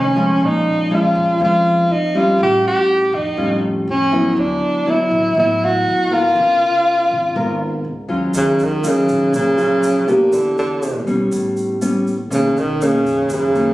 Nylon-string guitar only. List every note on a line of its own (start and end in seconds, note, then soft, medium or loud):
0.00 0.38 F2 soft
0.00 0.12 D#3 medium
0.00 0.12 A3 medium
0.00 0.12 C#4 medium
0.16 0.87 F3 medium
0.16 0.87 G#3 soft
0.16 0.87 C#4 medium
0.41 1.38 A#2 soft
0.91 1.36 F3 medium
0.91 1.36 G#3 soft
0.91 1.37 C#4 medium
1.40 2.37 F2 soft
1.40 1.90 F3 soft
1.40 1.89 G#3 soft
1.40 1.90 C#4 soft
2.14 3.10 G3 medium
2.14 3.10 C#4 medium
2.14 3.10 F4 medium
2.39 3.36 A2 soft
3.37 4.35 A2 soft
3.37 3.87 G3 soft
3.37 3.87 C#4 soft
3.37 3.87 F4 medium
4.12 4.83 F#3 medium
4.12 4.83 B3 medium
4.12 4.83 E4 medium
4.37 5.34 D3 medium
4.86 5.32 F#3 medium
4.86 5.33 B3 medium
4.86 5.33 E4 medium
5.37 6.33 A2 soft
5.37 6.07 F#3 soft
5.37 6.07 B3 soft
5.37 6.07 E4 soft
6.11 7.06 B3 medium
6.11 7.06 F4 soft
6.11 7.07 A#4 medium
6.36 7.33 C#3 medium
7.35 8.32 G#2 soft
7.35 7.84 B3 soft
7.35 7.85 F4 soft
7.35 7.85 A#4 soft
8.08 8.79 F#3 medium
8.08 8.80 C#4 medium
8.08 8.80 F4 medium
8.34 9.31 D#3 soft
8.83 9.54 F#3 soft
8.83 9.54 C#4 soft
8.83 9.54 F4 medium
9.32 10.30 A#2 soft
9.57 10.04 F#3 medium
9.57 10.04 C#4 soft
9.57 10.04 F4 medium
10.08 11.03 B3 medium
10.08 11.03 D4 medium
10.08 11.03 G4 medium
10.33 11.06 E3 soft
11.07 11.77 G3 soft
11.07 11.78 B3 medium
11.07 11.78 C#4 medium
11.31 12.28 A2 soft
11.81 12.14 G3 soft
11.81 12.13 B3 soft
11.81 12.14 C#4 medium
12.30 13.28 B2 soft
12.30 12.76 D#3 soft
12.30 12.77 A#3 soft
12.30 12.77 C#4 medium
12.81 13.52 D#3 medium
12.81 13.52 A#3 medium
12.81 13.52 C#4 medium
13.30 13.74 F#2 soft
13.55 13.74 D#3 medium
13.55 13.74 A#3 medium
13.55 13.74 C#4 medium